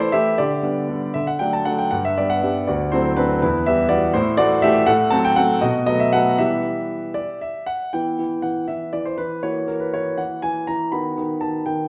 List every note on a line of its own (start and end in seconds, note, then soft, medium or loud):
0.00 0.10 E3 medium
0.00 0.11 A3 medium
0.00 0.11 E4 medium
0.00 0.13 C5 medium
0.12 0.36 E3 soft
0.12 0.36 A3 medium
0.12 0.37 E4 medium
0.12 0.37 G4 medium
0.12 0.38 E5 loud
0.38 0.64 D3 medium
0.38 1.11 G4 medium
0.38 1.15 D5 medium
0.62 0.86 G3 soft
0.62 0.86 B3 soft
0.62 0.87 D4 soft
0.89 1.12 G3 soft
0.89 1.12 B3 soft
0.89 1.13 D4 soft
1.14 1.40 D3 medium
1.14 1.27 E5 medium
1.27 1.40 F#5 medium
1.39 1.64 F#3 soft
1.39 1.64 A3 soft
1.39 1.64 D4 soft
1.39 1.53 G5 medium
1.53 1.66 A5 medium
1.65 1.90 F#3 soft
1.65 1.90 A3 soft
1.65 1.90 D4 soft
1.65 1.79 F#5 medium
1.79 1.92 G5 medium
1.91 2.17 G2 medium
1.91 2.05 F#5 medium
2.05 2.18 E5 medium
2.18 2.41 G3 soft
2.18 2.41 B3 soft
2.18 2.41 D4 soft
2.18 2.30 D5 medium
2.30 2.43 F#5 medium
2.42 2.65 G3 soft
2.42 2.65 B3 soft
2.42 2.66 D4 soft
2.42 2.66 G4 soft
2.42 2.67 E5 medium
2.67 2.92 D2 medium
2.67 2.91 F#4 medium
2.67 2.92 D5 medium
2.92 3.15 F#3 medium
2.92 3.15 A3 medium
2.92 3.15 C4 medium
2.92 3.16 E4 medium
2.92 3.17 C5 medium
3.17 3.39 F#3 medium
3.17 3.40 A3 soft
3.17 3.40 C4 medium
3.17 3.40 D4 medium
3.17 3.41 B4 medium
3.42 3.66 E2 medium
3.42 3.65 E4 medium
3.42 3.66 B4 medium
3.66 3.88 E3 medium
3.66 3.89 G3 medium
3.66 3.89 B3 medium
3.66 3.90 G4 medium
3.66 3.91 E5 medium
3.89 4.12 E3 soft
3.89 4.12 G3 medium
3.89 4.12 B3 medium
3.89 4.13 F#4 medium
3.89 4.14 D5 medium
4.14 4.38 A2 medium
4.14 4.38 E4 medium
4.14 4.39 C5 medium
4.37 4.61 E3 medium
4.37 4.61 A3 medium
4.37 4.62 F#4 medium
4.37 4.63 D5 loud
4.62 4.86 E3 medium
4.62 4.86 A3 medium
4.62 4.86 G4 medium
4.62 4.88 E5 loud
4.86 5.11 A2 medium
4.86 5.11 A4 medium
4.86 5.12 F#5 loud
5.10 5.34 F#3 medium
5.10 5.34 A3 medium
5.10 5.35 C4 medium
5.10 5.24 A5 loud
5.25 5.37 G5 loud
5.36 5.59 F#3 medium
5.36 5.60 A3 medium
5.36 5.60 C4 medium
5.36 5.60 A4 medium
5.36 5.62 F#5 medium
5.61 5.87 B2 medium
5.61 5.86 F#4 medium
5.61 5.85 D#5 medium
5.86 6.10 F#3 medium
5.86 6.10 A3 medium
5.86 6.11 B3 medium
5.86 6.00 D#5 loud
6.00 6.13 E5 medium
6.13 6.36 F#3 medium
6.13 6.36 A3 medium
6.13 6.37 B3 medium
6.13 6.37 A4 medium
6.13 6.39 F#5 medium
6.38 6.93 E3 medium
6.38 7.01 G3 soft
6.38 7.01 B3 soft
6.38 7.64 G4 medium
6.38 7.40 E5 medium
7.14 7.41 D5 medium
7.41 7.68 E5 medium
7.66 7.93 F#5 medium
7.93 8.17 E3 soft
7.93 9.40 B3 soft
7.93 9.40 E4 soft
7.93 8.44 G5 medium
8.19 8.42 E3 soft
8.42 8.67 E3 soft
8.42 8.68 F#5 medium
8.68 8.92 E3 soft
8.68 8.93 E5 medium
8.93 9.17 E3 soft
8.93 9.06 D5 medium
9.05 9.19 C5 medium
9.18 9.42 E3 soft
9.18 9.44 B4 medium
9.43 9.67 E3 soft
9.43 10.88 A#3 soft
9.43 10.88 F#4 soft
9.43 9.69 C#5 medium
9.68 9.93 E3 soft
9.68 9.81 A#4 medium
9.80 9.93 B4 medium
9.94 10.16 E3 soft
9.94 10.18 C#5 medium
10.18 10.42 E3 soft
10.18 10.43 F#5 medium
10.42 10.67 E3 soft
10.42 10.67 G#5 medium
10.67 10.92 E3 soft
10.67 10.92 A#5 medium
10.92 11.16 D#3 soft
10.92 11.88 B3 soft
10.92 11.88 F#4 soft
10.92 11.42 B5 medium
11.18 11.40 D#3 soft
11.41 11.65 D#3 soft
11.41 11.66 A5 medium
11.66 11.88 D#3 soft
11.66 11.88 G5 medium